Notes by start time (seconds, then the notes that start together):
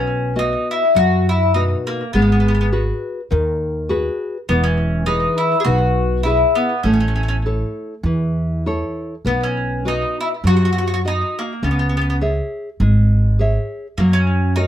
Already playing: B1 B2 C#4
0.36 B3 D#4 F#4 D#5
0.71 E4
0.95 F#2 F#3 F#4
1.29 E4
1.54 B2 D#4 F#4
1.87 A#3
2.13 G#1 G#3 B3
2.22 B3
2.32 B3
2.40 B3
2.48 B3
2.55 B3
2.61 B3
2.72 F#4 G#4 B4
3.31 D#2 D#3
3.89 F#4 G#4 B4
4.49 E1 E3 B3
4.64 C#4
5.06 E3 D#4 G#4 B4
5.38 E4
5.60 G#4
5.64 B1 B2 F#4
6.23 E4 G#4 B4
6.55 B3
6.83 A1 A3 C#4
6.93 C#4
7.00 C#4
7.08 C#4
7.16 C#4
7.23 C#4
7.28 C#4
7.46 E4 A4 C#5
8.03 E2 E3
8.66 E4 A4 C#5
9.25 B1 B3
9.43 C#4
9.85 D#4 F#4 B4 D#5
10.21 E4
10.44 F#2 F#3 F#4
10.57 F#4
10.65 F#4
10.73 F#4
10.78 F#4
10.87 F#4
10.94 F#4
11.05 D#4 F#4 D#5
11.39 A#3
11.63 C#2 B3 C#4
11.71 B3
11.79 B3
11.89 B3
11.97 B3
12.01 B3
12.10 B3
12.21 G#4 C#5 E5
12.80 G#1 G#3
13.39 G#4 C#5 E5
13.98 F#2 F#3 A#3
14.13 C#4
14.56 D#4 F#4 A#4 C#5